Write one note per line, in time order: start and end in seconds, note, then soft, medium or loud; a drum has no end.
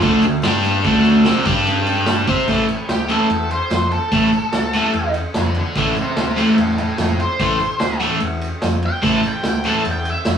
0.01 0.21 D2 loud
0.01 0.22 D3 medium
0.01 0.23 A3 loud
0.01 0.23 D4 loud
0.01 kick loud
0.01 ride loud
0.01 tambourine medium
0.21 0.42 D2 medium
0.21 0.40 D3 medium
0.21 0.40 A3 medium
0.21 ride medium
0.21 tambourine medium
0.42 0.81 G2 medium
0.42 0.84 G3 loud
0.42 0.84 D4 loud
0.42 0.85 G4 loud
0.42 snare loud
0.42 ride loud
0.42 tambourine medium
0.64 ride medium
0.64 tambourine medium
0.84 1.22 D2 loud
0.84 1.25 D3 loud
0.84 1.26 A3 loud
0.84 1.26 D4 loud
0.84 kick loud
0.84 ride loud
0.84 tambourine soft
1.05 ride medium
1.05 tambourine soft
1.25 1.45 C2 medium
1.25 1.45 C3 loud
1.25 1.44 G3 loud
1.25 1.46 C4 loud
1.25 snare loud
1.25 ride loud
1.25 tambourine medium
1.45 2.24 G2 loud
1.45 2.27 G3 medium
1.45 2.27 D4 medium
1.45 2.27 G4 loud
1.45 kick loud
1.45 ride medium
1.45 tambourine medium
1.67 ride medium
1.67 tambourine medium
1.87 ride medium
1.87 tambourine medium
2.06 snare loud
2.06 ride medium
2.06 tambourine medium
2.27 2.47 C3 medium
2.27 2.48 C4 medium
2.27 2.48 G4 medium
2.27 2.49 C5 medium
2.27 kick loud
2.27 ride medium
2.27 tambourine medium
2.48 2.73 A1 loud
2.48 2.65 A2 medium
2.48 2.65 E3 medium
2.48 2.65 A3 loud
2.48 kick loud
2.48 crash loud
2.48 tambourine medium
2.68 ride medium
2.68 tambourine medium
2.89 3.13 D2 medium
2.89 3.09 G4 medium
2.89 snare loud
2.89 ride loud
2.89 tambourine medium
3.08 3.26 A2 medium
3.08 3.26 E3 loud
3.08 3.26 A3 loud
3.08 ride medium
3.08 tambourine medium
3.13 3.51 A4 medium
3.30 3.54 E2 medium
3.30 ride medium
3.51 3.91 C5 medium
3.51 ride medium
3.70 3.95 F2 loud
3.70 snare loud
3.70 ride medium
3.70 tambourine medium
3.91 5.11 A4 loud
3.91 ride medium
3.91 tambourine soft
4.12 4.36 A1 medium
4.12 4.29 A2 medium
4.12 4.29 E3 medium
4.12 4.29 A3 loud
4.12 kick loud
4.12 ride medium
4.12 tambourine medium
4.32 ride medium
4.32 tambourine medium
4.52 4.78 D2 medium
4.52 snare loud
4.52 ride medium
4.52 tambourine medium
4.73 4.90 A2 medium
4.73 4.91 E3 medium
4.73 4.91 A3 loud
4.73 ride medium
4.73 tambourine medium
4.93 5.18 E2 loud
4.93 ride medium
5.14 ride medium
5.14 tambourine medium
5.34 5.60 F2 medium
5.34 5.56 A4 medium
5.34 5.56 D5 medium
5.34 snare loud
5.34 ride medium
5.34 tambourine medium
5.55 ride medium
5.55 tambourine soft
5.60 5.77 A4 medium
5.60 5.78 D5 medium
5.75 6.00 A1 loud
5.75 5.93 A2 loud
5.75 5.94 E3 loud
5.75 5.94 A3 loud
5.75 5.96 A4 medium
5.75 kick loud
5.75 ride loud
5.75 tambourine medium
5.80 5.98 D5 medium
5.96 ride medium
5.96 tambourine medium
6.01 6.18 G4 medium
6.01 6.19 C5 medium
6.17 6.41 D2 medium
6.17 6.38 G4 medium
6.17 snare loud
6.17 ride loud
6.17 tambourine medium
6.21 6.38 C5 medium
6.37 6.53 A2 medium
6.37 6.54 E3 medium
6.37 6.54 A3 loud
6.37 6.57 G4 medium
6.37 6.58 C5 medium
6.37 ride medium
6.37 tambourine medium
6.58 6.82 E2 medium
6.58 6.77 E4 medium
6.58 6.79 A4 loud
6.58 ride loud
6.78 6.98 E4 medium
6.78 6.99 A4 loud
6.78 ride medium
6.78 tambourine medium
6.98 7.23 F2 loud
6.98 7.19 E4 medium
6.98 snare loud
6.98 ride loud
6.98 tambourine medium
7.02 7.20 A4 medium
7.20 7.99 C5 medium
7.20 ride medium
7.20 tambourine soft
7.39 7.64 A1 loud
7.39 7.56 A2 medium
7.39 7.57 E3 medium
7.39 7.57 A3 loud
7.39 kick loud
7.39 ride medium
7.39 tambourine medium
7.60 ride medium
7.60 tambourine medium
7.80 8.05 D2 medium
7.80 snare loud
7.80 ride loud
7.80 tambourine medium
8.00 8.17 A2 medium
8.00 8.17 E3 loud
8.00 8.18 A3 medium
8.00 ride medium
8.00 tambourine medium
8.20 8.46 E2 medium
8.20 ride medium
8.20 tambourine soft
8.41 ride medium
8.41 tambourine medium
8.62 8.87 F2 medium
8.62 snare loud
8.62 ride medium
8.62 tambourine medium
8.83 9.04 G5 loud
8.83 ride medium
9.03 9.27 A1 medium
9.03 9.19 A2 medium
9.03 9.20 E3 loud
9.03 9.20 A3 medium
9.03 9.25 A5 loud
9.03 kick loud
9.03 tambourine medium
9.03 crash loud
9.23 ride medium
9.23 tambourine medium
9.28 9.46 G5 loud
9.43 9.69 D2 medium
9.43 snare loud
9.43 ride medium
9.43 tambourine medium
9.49 9.66 G5 medium
9.64 9.81 A2 medium
9.64 9.82 E3 medium
9.64 9.82 A3 medium
9.64 ride medium
9.64 tambourine medium
9.70 9.87 A5 loud
9.85 10.10 E2 medium
9.85 ride loud
9.91 10.08 G5 medium
10.05 ride medium
10.05 tambourine medium
10.10 10.38 E5 loud
10.25 10.38 F2 loud
10.25 snare loud
10.25 ride medium
10.25 tambourine loud